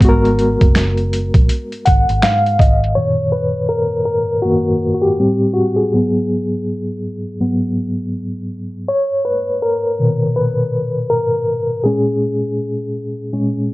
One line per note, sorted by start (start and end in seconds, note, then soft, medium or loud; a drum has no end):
0.00 0.56 G#1 loud
0.00 2.90 G#3 medium
0.00 2.92 B3 medium
0.00 kick loud
0.00 closed hi-hat medium
0.04 2.95 F#4 medium
0.09 2.97 A#4 medium
0.25 closed hi-hat soft
0.39 closed hi-hat medium
0.61 1.31 F#1 medium
0.61 kick medium
0.61 closed hi-hat soft
0.75 finger snap medium
0.75 snare loud
0.75 closed hi-hat medium
0.97 closed hi-hat soft
1.13 closed hi-hat medium
1.34 1.47 A#1 medium
1.34 kick loud
1.34 closed hi-hat medium
1.49 closed hi-hat medium
1.72 closed hi-hat soft
1.85 2.07 G#1 medium
1.85 2.20 F#5 medium
1.85 kick medium
1.85 closed hi-hat medium
2.09 2.25 G#1 medium
2.09 closed hi-hat soft
2.22 2.56 G#2 medium
2.22 2.57 F5 medium
2.22 finger snap medium
2.22 snare loud
2.22 closed hi-hat medium
2.46 closed hi-hat soft
2.59 2.93 G#1 medium
2.59 2.94 D#5 medium
2.59 kick medium
2.59 closed hi-hat medium
2.84 closed hi-hat soft
2.95 4.03 F#2 soft
2.95 4.04 A#2 medium
2.95 4.04 D#3 soft
2.95 3.30 C#5 loud
3.32 3.71 B4 medium
3.69 4.04 A#4 medium
4.05 4.22 A#4 medium
4.42 4.78 F#2 soft
4.42 4.78 D#3 soft
4.42 4.78 A#3 medium
4.42 4.91 F#4 medium
4.94 5.04 F#4 medium
5.02 5.51 G4 medium
5.19 5.71 A2 medium
5.19 5.71 G3 soft
5.19 5.72 C4 medium
5.54 5.78 F#4 medium
5.76 6.47 G#4 medium
5.93 7.00 G#2 soft
5.93 7.00 F#3 soft
5.93 7.00 B3 medium
7.40 7.74 G#2 soft
7.40 7.74 F#3 soft
7.40 7.74 B3 medium
8.89 9.27 C#5 loud
9.25 9.60 B4 medium
9.62 10.33 A#4 medium
9.99 11.07 A#2 medium
9.99 11.07 B2 soft
9.99 11.07 D#3 soft
10.36 11.07 B4 medium
11.10 11.81 A#4 medium
11.84 13.31 A#2 medium
11.84 13.32 G#3 soft
11.84 13.32 C#4 medium
11.84 13.74 G#4 medium
13.33 13.66 A#2 soft
13.33 13.67 G#3 soft
13.33 13.67 C#4 soft